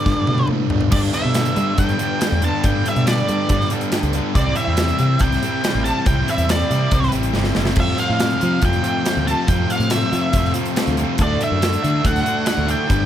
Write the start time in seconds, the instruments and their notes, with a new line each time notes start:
Already playing: distorted electric guitar G2 D3 G3 B3, overdriven electric guitar G2 D3 G3, lead electric guitar D5
0.06 fingered electric bass G2, distorted electric guitar D4, kick, snare
0.18 fingered electric bass G2
0.27 fingered electric bass B2, distorted electric guitar G3, high tom
0.38 high tom
0.47 fingered electric bass A2, distorted electric guitar B3, mid tom
0.70 fingered electric bass G2, distorted electric guitar D4, floor tom
0.81 floor tom
0.92 fingered electric bass G2, distorted electric guitar G2 D3 G3 B3 D4 G4, tonewheel organ G3 B3 D4 B4, lead electric guitar D5, kick, crash
1.13 distorted electric guitar G2 D3 G3 B3 D4 G4, lead electric guitar E5, closed hi-hat
1.25 fingered electric bass B2
1.34 distorted electric guitar G2 D3 G3 B3 D4 G4, snare, closed hi-hat
1.45 closed hi-hat
1.56 distorted electric guitar G2 D3 G3 B3 D4 G4, fingered electric bass G3, closed hi-hat
1.78 fingered electric bass G2, distorted electric guitar G2 D3 G3 B3 G4, lead electric guitar G5, kick, closed hi-hat
1.82 distorted electric guitar D4
1.89 closed hi-hat
1.99 distorted electric guitar G2 D3 G3 B3 D4 G4, closed hi-hat
2.21 distorted electric guitar G2 D3 G3 B3, snare, closed hi-hat
2.25 distorted electric guitar D4 G4
2.32 fingered electric bass E2
2.42 distorted electric guitar G2 D3 G3 B3, lead electric guitar A5, closed hi-hat
2.46 distorted electric guitar D4 G4
2.64 fingered electric bass G2, distorted electric guitar G2 D3 G3 B3 D4, lead electric guitar G5, kick, closed hi-hat
2.68 distorted electric guitar G4
2.86 distorted electric guitar G2 D3 G3 B3 D4 G4, lead electric guitar E5, closed hi-hat
2.96 fingered electric bass B2, closed hi-hat
3.07 distorted electric guitar G2 D3 G3 B3 D4 G4, lead electric guitar D5, snare, closed hi-hat
3.28 distorted electric guitar G2 D3 G3 B3 D4 G4, fingered electric bass G3, closed hi-hat
3.49 distorted electric guitar G2 D3 G3 B3 D4 G4, fingered electric bass G2, kick, closed hi-hat
3.61 snare
3.70 distorted electric guitar G2 D3 G3 B3 D4, closed hi-hat
3.74 distorted electric guitar G4
3.81 closed hi-hat
3.92 distorted electric guitar G2 D3 G3 B3 D4 G4, snare, closed hi-hat
4.03 fingered electric bass C#2, closed hi-hat
4.13 distorted electric guitar G2 D3 G3 B3, closed hi-hat
4.17 distorted electric guitar D4 G4
4.35 fingered electric bass C2, distorted electric guitar C3 E3 G3 C4 E4, tonewheel organ G3 C4 E4 C5, lead electric guitar D5, kick, closed hi-hat
4.56 distorted electric guitar C3 E3 G3, lead electric guitar E5, closed hi-hat
4.60 distorted electric guitar C4 E4
4.67 fingered electric bass E2
4.77 distorted electric guitar C3 E3 G3, snare, closed hi-hat
4.82 distorted electric guitar C4 E4
4.88 closed hi-hat
4.99 distorted electric guitar C3 E3 G3 C4 E4, fingered electric bass C3, closed hi-hat
5.19 fingered electric bass C2, distorted electric guitar C3 E3 G3, lead electric guitar G5, kick, closed hi-hat
5.23 distorted electric guitar C4 E4
5.32 snare, closed hi-hat
5.43 distorted electric guitar C3 E3 G3 C4 E4, closed hi-hat
5.64 distorted electric guitar C3 E3 G3 C4 E4, snare, closed hi-hat
5.75 fingered electric bass A1
5.84 distorted electric guitar C3 E3 G3 C4, lead electric guitar A5, closed hi-hat
5.88 distorted electric guitar E4
6.06 fingered electric bass C2, distorted electric guitar C3 E3 G3 C4 E4, lead electric guitar G5, kick, closed hi-hat
6.27 distorted electric guitar C3 E3 G3 C4 E4, lead electric guitar E5, closed hi-hat
6.38 fingered electric bass E2, closed hi-hat
6.48 distorted electric guitar C3 E3 G3 C4 E4, lead electric guitar D5, snare, closed hi-hat
6.69 distorted electric guitar C3 E3 G3 C4 E4, fingered electric bass C3, closed hi-hat
6.91 fingered electric bass C2, distorted electric guitar C3 E3 G3 C4 E4, kick, closed hi-hat
7.03 snare
7.12 fingered electric bass A1, distorted electric guitar C3 E3 G3 C4 E4, closed hi-hat
7.23 closed hi-hat
7.34 fingered electric bass G1, distorted electric guitar C3 E3 G3 C4 E4, snare
7.44 snare
7.55 fingered electric bass F#1, distorted electric guitar C3 E3 G3 C4 E4, snare
7.65 snare
7.76 fingered electric bass F2, distorted electric guitar F2 C3 F3 A3 C4, tonewheel organ A3 C4 F4 C5, kick, crash
7.80 distorted electric guitar F4, lead electric guitar E5
7.98 distorted electric guitar F2 C3 F3 A3 C4 F4, lead electric guitar F5, closed hi-hat
8.09 fingered electric bass A2
8.19 distorted electric guitar F2 C3 F3 A3 C4 F4, snare, closed hi-hat
8.30 closed hi-hat
8.41 distorted electric guitar F2 C3 F3 A3 C4 F4, fingered electric bass F3, closed hi-hat
8.62 distorted electric guitar F2 C3 F3 A3 C4 F4, fingered electric bass F2, lead electric guitar G5, kick, closed hi-hat
8.73 closed hi-hat
8.83 distorted electric guitar F2 C3 F3 A3 C4 F4, closed hi-hat
9.06 distorted electric guitar F2 C3 F3 A3 C4 F4, snare, closed hi-hat
9.17 fingered electric bass D2
9.26 distorted electric guitar F2 C3 F3 A3 C4 F4, lead electric guitar A5, closed hi-hat
9.47 distorted electric guitar F2 C3 F3 A3 C4 F4, fingered electric bass F2, lead electric guitar G5, kick, closed hi-hat
9.69 distorted electric guitar F2 C3 F3 A3 C4 F4, lead electric guitar F5, closed hi-hat
9.79 fingered electric bass A2, closed hi-hat
9.90 distorted electric guitar F2 C3 F3 A3 C4 F4, lead electric guitar E5, snare, closed hi-hat
10.12 distorted electric guitar F2 C3 F3 A3 C4 F4, fingered electric bass F3, closed hi-hat
10.33 fingered electric bass F2, distorted electric guitar F2 C3 F3 A3, kick, closed hi-hat
10.38 distorted electric guitar C4 F4
10.44 snare
10.54 overdriven electric guitar C3 F3, closed hi-hat
10.58 distorted electric guitar F2 C3 F3 A3 C4 F4
10.65 closed hi-hat
10.76 distorted electric guitar F2 C3 F3, snare, closed hi-hat
10.80 distorted electric guitar A3 C4 F4
10.87 fingered electric bass D2, closed hi-hat
10.97 distorted electric guitar F2 C3 F3 A3 C4, closed hi-hat
11.02 distorted electric guitar F4
11.18 fingered electric bass D2, distorted electric guitar D3 A3 D4 F#4, tonewheel organ A3 E4 F#4 D5, kick, closed hi-hat
11.22 lead electric guitar D5
11.41 distorted electric guitar D3 A3 D4 F#4, lead electric guitar E5, closed hi-hat
11.51 fingered electric bass F#2
11.62 distorted electric guitar D3 A3 D4 F#4, snare, closed hi-hat
11.73 closed hi-hat
11.84 fingered electric bass D3, distorted electric guitar D3 A3 D4 F#4, closed hi-hat
12.04 fingered electric bass D2, distorted electric guitar D3 A3 D4 F#4, lead electric guitar F#5, kick, closed hi-hat
12.16 snare, closed hi-hat
12.26 distorted electric guitar D3 A3 D4 F#4, closed hi-hat
12.46 distorted electric guitar D3 A3 D4 F#4, lead electric guitar F#5, snare, closed hi-hat
12.58 fingered electric bass D2
12.68 distorted electric guitar D3 A3 D4 F#4, lead electric guitar G5, closed hi-hat
12.90 fingered electric bass G1, distorted electric guitar G2 D3 G3 B3 D4 G4, tonewheel organ B3 D4 G4 D5, kick, closed hi-hat